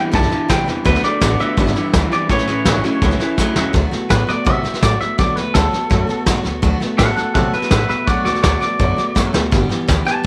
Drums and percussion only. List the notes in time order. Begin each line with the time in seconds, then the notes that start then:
0.14 kick, snare
0.22 snare
0.31 snare
0.50 kick, snare, hi-hat pedal
0.68 snare
0.85 kick, snare
0.95 snare
1.03 snare
1.21 kick, snare, hi-hat pedal
1.40 snare
1.57 kick, snare
1.67 snare
1.76 snare
1.93 kick, snare, hi-hat pedal
2.11 snare
2.29 kick, snare
2.38 snare
2.47 snare
2.65 kick, snare, hi-hat pedal
2.84 snare
3.02 kick, snare
3.11 snare
3.20 snare
3.38 kick, snare, hi-hat pedal
3.56 snare
3.74 kick, snare
3.92 snare
4.10 kick, snare, hi-hat pedal
4.28 snare
4.46 kick, snare
4.64 snare
4.74 snare
4.83 kick, snare, hi-hat pedal
5.01 snare
5.19 kick, snare
5.37 snare
5.55 kick, snare, hi-hat pedal
5.73 snare
5.90 kick, snare
6.09 snare
6.26 kick, snare, hi-hat pedal
6.44 snare
6.62 kick, snare
6.81 snare
6.99 kick, snare, hi-hat pedal
7.17 snare
7.35 kick, snare
7.53 snare
7.62 snare
7.71 kick, snare, hi-hat pedal
7.89 snare
8.07 kick, snare
8.25 snare
8.35 snare
8.44 kick, snare, hi-hat pedal
8.62 snare
8.79 kick, snare
8.98 snare
9.16 kick, snare, hi-hat pedal
9.34 snare
9.52 kick, snare
9.70 snare
9.89 kick, snare, hi-hat pedal
10.07 snare